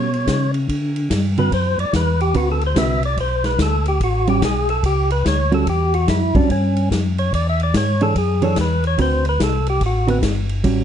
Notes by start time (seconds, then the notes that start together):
Already playing: B2 C#5
0.14 ride
0.27 C#3, kick, snare, hi-hat pedal, ride
0.54 ride
0.69 D3, kick, ride
0.96 ride
1.10 G2, kick, snare, hi-hat pedal, ride
1.38 D3 C4 F#4 B4, ride
1.52 F#2 C5, kick, ride
1.78 F#2 D5, ride
1.93 E2 B4, kick, snare, hi-hat pedal, ride
2.20 G4, ride
2.34 D2 D3 C4 F#4 B4, kick, ride
2.52 A4
2.61 ride
2.66 C5
2.76 C2 D3 C4 F#4 B4 E5, kick, snare, hi-hat pedal, ride
3.03 D5, ride
3.17 B1 C5, kick, ride
3.44 B4, snare, ride
3.58 D2 A4, kick, snare, hi-hat pedal, ride
3.86 G4, ride
4.00 A1 F#4, kick, ride
4.27 G3 C#4 F#4 G4, ride
4.42 B1 G#4, kick, snare, hi-hat pedal, ride
4.69 A4, ride
4.83 C#2 G4, kick, ride
5.10 B4, ride
5.25 D2 C#5, kick, snare, hi-hat pedal, ride
5.52 G3 C#4 F#4 A4, ride
5.67 E2 G4, kick, ride
5.94 F#4, ride
6.08 F#2 E4, kick, snare, hi-hat pedal, ride
6.35 F#2 G3 C#4 D4 F#4, kick, ride
6.50 G2 C#4, kick, ride
6.76 ride
6.91 F#2, kick, snare, hi-hat pedal, ride
7.18 C#5, ride
7.33 E2 D5, kick, ride
7.49 E5
7.60 D5, ride
7.74 G#2 C#5, kick, snare, hi-hat pedal, ride
8.01 E3 D4 G#4 A4 C#5, ride
8.15 F#2 G#4, kick, ride
8.42 E3 D4 G#4 A4 C#5, ride
8.56 E2, kick, snare, hi-hat pedal, ride
8.61 B4
8.84 C#5, ride
8.98 D2 D3 C4 F#4 B4 C5, kick, ride
9.25 ride
9.29 B4
9.40 C2 A4, kick, snare, hi-hat pedal, ride
9.66 G4, ride
9.81 A1, kick, ride
9.86 F#4
10.07 D3 B3 C4 F#4 B4, ride
10.22 G1, kick, snare, hi-hat pedal, ride
10.49 ride
10.63 A1 G3 C#4 F#4, kick, ride